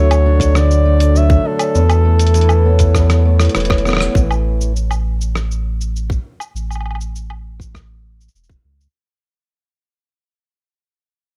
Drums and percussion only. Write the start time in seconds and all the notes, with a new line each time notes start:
0.11 closed hi-hat, cabasa, low woodblock
0.40 kick, closed hi-hat, cabasa
0.55 cross-stick, cabasa
0.71 cabasa
1.00 closed hi-hat, cabasa
1.16 cabasa
1.30 kick, cabasa
1.59 closed hi-hat, cabasa, low woodblock
1.75 cabasa
1.90 closed hi-hat, cabasa, low woodblock
2.19 closed hi-hat, cabasa
2.27 closed hi-hat
2.34 closed hi-hat, cabasa
2.41 closed hi-hat
2.49 cabasa, low woodblock
2.79 kick, closed hi-hat, cabasa
2.95 kick, cross-stick, cabasa
3.10 cross-stick, closed hi-hat, cabasa
3.40 cross-stick, closed hi-hat, cabasa
3.45 closed hi-hat
3.49 closed hi-hat
3.55 cross-stick, closed hi-hat, cabasa
3.60 closed hi-hat
3.65 closed hi-hat
3.70 kick, cross-stick
3.78 closed hi-hat
3.85 cross-stick, cabasa
3.89 cross-stick
3.93 cross-stick
3.97 cross-stick
4.01 cross-stick, cabasa
4.15 kick, cabasa
4.31 cabasa, low woodblock
4.61 cabasa
4.76 cabasa
4.91 cabasa, low woodblock
5.21 cabasa
5.36 cross-stick, cabasa
5.51 cabasa
5.81 cabasa
5.96 cabasa
6.10 kick, cabasa
6.40 cabasa, low woodblock
6.56 cabasa
6.71 cabasa, low woodblock
6.75 low woodblock
6.81 low woodblock
6.86 low woodblock
6.91 low woodblock
6.95 low woodblock
7.01 cabasa
7.16 cabasa
7.30 low woodblock
7.60 kick, cabasa
7.75 kick, cross-stick, cabasa
8.21 cabasa
8.28 cabasa
8.36 cabasa
8.44 cabasa
8.49 kick
8.81 cabasa